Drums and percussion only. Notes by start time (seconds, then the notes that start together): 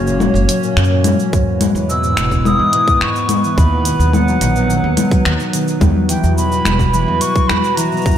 0.07 cabasa
0.20 low conga, cabasa
0.35 cabasa
0.49 closed hi-hat, cabasa
0.63 cabasa
0.77 finger snap, cabasa
0.84 cabasa
1.04 closed hi-hat, low conga, cabasa
1.19 cabasa
1.33 kick, cabasa
1.61 closed hi-hat, low conga, cabasa
1.75 cabasa
1.90 cabasa
2.03 cabasa
2.17 finger snap, closed hi-hat, cabasa
2.31 kick, cabasa
2.45 low conga, cabasa
2.73 closed hi-hat
2.88 kick, cabasa
3.01 finger snap
3.16 cabasa
3.29 closed hi-hat, low conga, cabasa
3.44 cabasa
3.58 kick, cabasa
3.85 closed hi-hat, cabasa
4.00 cabasa
4.13 low conga, cabasa
4.28 cabasa
4.41 closed hi-hat, cabasa
4.56 cabasa
4.70 cabasa
4.97 closed hi-hat, low conga, cabasa
5.11 kick, cabasa
5.25 finger snap, cabasa
5.40 cabasa
5.53 closed hi-hat, cabasa
5.68 cabasa
5.81 kick, low conga, cabasa
6.09 closed hi-hat, cabasa
6.24 cabasa
6.38 cabasa
6.52 cabasa
6.65 finger snap, low conga, cabasa
6.79 kick, cabasa
6.94 cabasa
7.21 closed hi-hat, cabasa
7.36 kick, cabasa
7.49 finger snap, low conga, cabasa
7.64 cabasa
7.77 closed hi-hat, cabasa
7.92 cabasa
7.97 cabasa
8.01 cabasa
8.06 kick, cabasa
8.11 cabasa